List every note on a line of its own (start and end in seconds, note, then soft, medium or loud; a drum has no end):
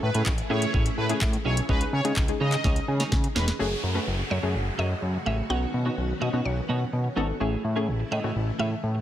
0.00 0.10 A2 loud
0.00 3.55 C#3 medium
0.00 1.67 E3 medium
0.00 0.38 A3 medium
0.00 1.67 A3 medium
0.00 0.39 C#4 medium
0.00 0.39 E4 medium
0.00 1.67 E4 medium
0.00 0.39 G#4 medium
0.00 1.67 G#4 medium
0.00 0.20 B4 medium
0.00 muted clean electric guitar stroke soft
0.14 0.22 A2 loud
0.14 0.32 C#4 medium
0.14 0.32 E4 medium
0.14 0.31 G#4 medium
0.14 0.31 C#5 medium
0.14 closed hi-hat medium
0.26 0.42 A1 loud
0.26 kick loud
0.26 clap loud
0.38 muted clean electric guitar stroke soft
0.38 closed hi-hat medium
0.50 0.66 A2 loud
0.50 1.00 A3 medium
0.50 0.69 C#4 medium
0.50 1.00 C#4 medium
0.50 1.00 E4 medium
0.50 0.61 E4 loud
0.50 1.00 G#4 medium
0.50 0.61 G#4 loud
0.50 0.84 C#5 medium
0.50 0.60 C#5 loud
0.62 muted clean electric guitar stroke soft
0.62 closed hi-hat medium
0.73 0.89 A1 loud
0.73 0.93 C#4 medium
0.73 0.85 E4 medium
0.73 0.85 G#4 medium
0.73 0.84 C#5 medium
0.73 kick loud
0.85 muted clean electric guitar stroke medium
0.85 closed hi-hat medium
0.98 1.13 A2 medium
0.98 1.06 B4 medium
0.98 muted clean electric guitar stroke soft
1.09 1.59 A3 medium
1.09 1.59 C#4 medium
1.09 1.20 C#4 soft
1.09 1.60 E4 medium
1.09 1.21 E4 medium
1.09 1.60 G#4 medium
1.09 1.21 G#4 medium
1.09 1.21 C#5 medium
1.09 closed hi-hat medium
1.21 1.37 A2 loud
1.21 kick loud
1.21 clap loud
1.33 muted clean electric guitar stroke soft
1.33 closed hi-hat soft
1.45 1.61 B1 loud
1.45 1.64 C#4 medium
1.45 1.57 E4 medium
1.45 1.56 G#4 medium
1.45 1.54 C#5 medium
1.45 1.56 C#5 loud
1.57 muted clean electric guitar stroke soft
1.57 closed hi-hat medium
1.69 1.85 C#2 loud
1.69 3.58 D#3 medium
1.69 1.99 G#3 medium
1.69 3.58 G#3 medium
1.69 1.91 C#4 medium
1.69 1.99 C#4 medium
1.69 3.58 D#4 medium
1.69 1.99 D#4 medium
1.69 1.91 D#4 medium
1.69 3.58 G#4 medium
1.69 1.99 G#4 medium
1.69 1.91 G#4 medium
1.69 1.86 B4 loud
1.69 1.91 C#5 medium
1.69 kick loud
1.81 closed hi-hat medium
1.93 2.01 C#3 loud
1.93 2.10 C#5 medium
1.93 muted clean electric guitar stroke medium
2.04 2.13 C#3 loud
2.04 2.25 G#3 medium
2.04 2.25 C#4 medium
2.04 2.22 C#4 medium
2.04 2.25 D#4 medium
2.04 2.22 D#4 medium
2.04 2.22 G#4 medium
2.04 2.25 G#4 medium
2.04 2.21 C#5 medium
2.04 closed hi-hat medium
2.16 2.32 C#2 medium
2.16 kick loud
2.16 clap loud
2.28 3.08 G#3 medium
2.28 3.08 C#4 medium
2.28 3.08 D#4 medium
2.28 3.09 G#4 medium
2.28 muted clean electric guitar stroke soft
2.28 closed hi-hat medium
2.40 2.56 C#3 loud
2.40 2.59 C#4 medium
2.40 2.52 D#4 loud
2.40 2.52 G#4 loud
2.40 2.51 C#5 loud
2.40 2.85 D#5 medium
2.52 muted clean electric guitar stroke soft
2.52 clap medium
2.52 closed hi-hat medium
2.64 2.80 C#2 loud
2.64 2.83 C#4 medium
2.64 2.76 D#4 loud
2.64 2.75 G#4 medium
2.64 2.75 C#5 medium
2.64 kick loud
2.64 snare medium
2.76 muted clean electric guitar stroke soft
2.76 closed hi-hat medium
2.88 3.04 C#3 loud
2.88 muted clean electric guitar stroke soft
3.00 3.10 C#4 medium
3.00 3.11 D#4 medium
3.00 3.11 G#4 medium
3.00 3.11 C#5 medium
3.00 snare medium
3.00 closed hi-hat medium
3.12 3.27 C#3 loud
3.12 muted clean electric guitar stroke soft
3.12 kick loud
3.12 snare medium
3.24 muted clean electric guitar stroke soft
3.24 closed hi-hat soft
3.35 3.51 E1 loud
3.35 3.55 C#4 medium
3.35 3.47 D#4 medium
3.35 3.47 G#4 medium
3.35 3.44 B4 medium
3.35 3.46 C#5 medium
3.35 snare loud
3.47 muted clean electric guitar stroke soft
3.47 snare medium
3.47 closed hi-hat medium
3.59 3.75 F#1 loud
3.59 5.48 C#3 medium
3.59 5.48 F#3 medium
3.59 3.89 A3 medium
3.59 3.81 A3 medium
3.59 5.48 A3 medium
3.59 3.89 C#4 medium
3.59 3.82 C#4 medium
3.59 3.90 F#4 medium
3.59 7.37 F#4 medium
3.59 3.90 G#4 loud
3.59 5.48 G#4 medium
3.59 3.82 G#4 medium
3.59 3.82 C#5 medium
3.59 downlifter medium
3.83 3.99 F#2 loud
3.83 muted clean electric guitar stroke soft
3.95 4.35 A3 medium
3.95 4.06 A3 medium
3.95 4.35 C#4 medium
3.95 4.06 C#4 medium
3.95 4.35 F#4 medium
3.95 4.06 G#4 medium
3.95 4.35 B4 medium
3.95 4.07 C#5 medium
4.07 4.23 F#1 loud
4.19 muted clean electric guitar stroke soft
4.30 4.39 F#2 loud
4.30 4.42 A3 medium
4.30 4.42 C#4 medium
4.30 4.42 G#4 medium
4.30 4.80 C#5 medium
4.30 4.41 C#5 medium
4.42 4.56 F#2 loud
4.42 5.23 A3 medium
4.42 4.53 A3 soft
4.42 5.23 C#4 medium
4.42 4.54 C#4 medium
4.42 5.23 F#4 medium
4.42 4.54 G#4 medium
4.42 5.23 G#4 medium
4.42 4.54 C#5 medium
4.55 4.70 F#1 loud
4.55 muted clean electric guitar stroke soft
4.66 muted clean electric guitar stroke soft
4.78 4.94 F#2 loud
4.78 4.97 A3 medium
4.78 4.90 C#4 medium
4.78 4.89 G#4 medium
4.78 4.89 C#5 medium
4.78 5.23 D#5 medium
4.90 muted clean electric guitar stroke soft
5.02 5.18 F#2 medium
5.02 muted clean electric guitar stroke soft
5.14 muted clean electric guitar stroke soft
5.26 5.42 A1 medium
5.26 5.45 A3 medium
5.26 5.38 C#4 medium
5.26 5.37 G#4 medium
5.26 5.37 C#5 medium
5.26 5.37 E5 loud
5.38 muted clean electric guitar stroke soft
5.49 5.65 B1 loud
5.49 7.39 D#3 medium
5.49 7.39 F#3 medium
5.49 5.72 B3 medium
5.49 5.80 B3 medium
5.49 7.39 B3 medium
5.49 5.80 C#4 medium
5.49 7.38 C#4 medium
5.49 5.80 D#4 medium
5.49 5.72 D#4 medium
5.49 5.80 F#4 medium
5.49 5.72 F#4 medium
5.49 5.72 C#5 medium
5.49 6.24 F#5 loud
5.74 5.89 B2 medium
5.74 muted clean electric guitar stroke soft
5.85 6.25 B3 medium
5.85 5.96 B3 soft
5.85 6.26 C#4 medium
5.85 6.26 D#4 medium
5.85 5.96 D#4 medium
5.85 5.97 F#4 medium
5.85 6.26 F#4 medium
5.85 5.97 C#5 medium
5.98 6.13 B1 loud
6.09 muted clean electric guitar stroke soft
6.21 6.29 B2 loud
6.21 6.33 B3 medium
6.21 6.32 D#4 medium
6.21 6.32 F#4 medium
6.21 6.31 C#5 loud
6.21 6.46 D#5 medium
6.33 6.41 B2 medium
6.33 7.03 B3 medium
6.33 6.44 B3 medium
6.33 7.03 C#4 medium
6.33 7.03 D#4 medium
6.33 6.44 D#4 medium
6.33 6.44 F#4 medium
6.33 7.03 F#4 medium
6.33 6.44 C#5 medium
6.45 6.61 B1 loud
6.45 7.13 C#5 medium
6.45 muted clean electric guitar stroke soft
6.57 muted clean electric guitar stroke soft
6.68 6.85 B2 loud
6.68 6.88 B3 medium
6.68 6.80 D#4 medium
6.68 6.80 F#4 medium
6.68 6.79 C#5 medium
6.80 muted clean electric guitar stroke medium
6.92 7.08 B2 medium
6.92 muted clean electric guitar stroke soft
7.04 muted clean electric guitar stroke soft
7.16 7.32 G#1 medium
7.16 7.35 B3 medium
7.16 7.36 B3 medium
7.16 7.37 C#4 medium
7.16 7.28 D#4 loud
7.16 7.37 D#4 medium
7.16 7.28 F#4 medium
7.16 7.37 A4 loud
7.16 7.27 C#5 loud
7.28 muted clean electric guitar stroke soft
7.40 7.56 A1 loud
7.40 9.02 C#3 medium
7.40 9.02 E3 medium
7.40 7.62 A3 medium
7.40 7.70 A3 medium
7.40 9.02 A3 medium
7.40 7.70 C#4 medium
7.40 7.62 E4 medium
7.40 9.02 E4 medium
7.40 7.70 E4 medium
7.40 7.71 G#4 loud
7.40 7.63 G#4 medium
7.40 7.63 C#5 medium
7.64 7.90 A2 loud
7.64 muted clean electric guitar stroke soft
7.76 8.16 A3 medium
7.76 7.87 A3 soft
7.76 8.16 C#4 medium
7.76 8.16 E4 medium
7.76 7.87 E4 soft
7.76 7.87 G#4 medium
7.76 8.16 G#4 loud
7.76 7.87 C#5 medium
7.88 8.04 A1 loud
7.88 muted clean electric guitar stroke soft
8.00 muted clean electric guitar stroke medium
8.11 8.20 A2 loud
8.11 8.23 A3 medium
8.11 8.23 E4 medium
8.11 8.22 G#4 medium
8.11 8.22 C#5 loud
8.11 8.56 D#5 medium
8.23 8.32 A2 medium
8.23 9.02 A3 medium
8.23 8.34 A3 medium
8.23 9.02 C#4 medium
8.23 9.02 E4 medium
8.23 8.34 E4 medium
8.23 9.02 F#4 medium
8.23 8.35 G#4 medium
8.23 8.35 C#5 medium
8.35 8.51 A1 loud
8.35 muted clean electric guitar stroke soft
8.47 muted clean electric guitar stroke soft
8.59 8.75 A2 loud
8.59 8.78 A3 medium
8.59 8.70 E4 medium
8.59 8.70 G#4 medium
8.59 8.70 C#5 medium
8.59 9.02 E5 loud
8.71 muted clean electric guitar stroke soft
8.83 8.99 A2 medium
8.83 muted clean electric guitar stroke soft
8.95 muted clean electric guitar stroke soft